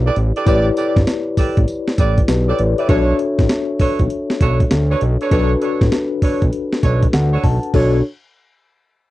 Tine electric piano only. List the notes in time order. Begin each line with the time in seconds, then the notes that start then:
Already playing: E4 G4 B4 D5
0.46 E4 G4 B4 C#5
0.55 D5
2.29 G4 B4
2.49 A4 C#5
2.59 B4 D5
2.79 C#5 E5
2.88 D4 F#4 A4 C#5
5.31 D4 F#4 A4 B4
7.14 F#5
7.44 A5
7.74 D4 F#4 A4 C#5